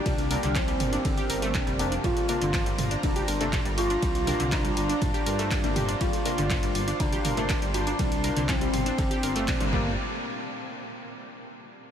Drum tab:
RD |x-x-xxx-x-x-x-xx|x-x-x-x-x-x-x-x-|x-x-xxx-x-x-x-xx|x-x-x-x-x-x-x-x-|
HH |xxoxxxoxxxoxxxox|xxoxxxoxxxoxxxox|xxoxxxoxxxoxxxox|xxoxxxoxxxoxxxox|
CP |----x-------x---|----x-------x---|----x-------x---|----x-------x---|
SD |-o--o--o---ooo--|-o--oo------o---|-o--o--o---ooo--|-o--oo------o---|
T2 |o-----o-----o---|o-----o-----o---|--o-----o-----o-|----o-----o-----|
BD |o---o---o---o---|o---o---o---o---|o---o---o---o---|o---o---o---o---|

RD |x-x-xxx-x-x-x---|----------------|
HH |xxoxxxoxxxoxxx--|----------------|
CP |----x-------x---|----------------|
SD |-o--o--o----oo--|----------------|
T2 |o-----o-----o---|----------------|
BD |o---o---o---o-o-|----------------|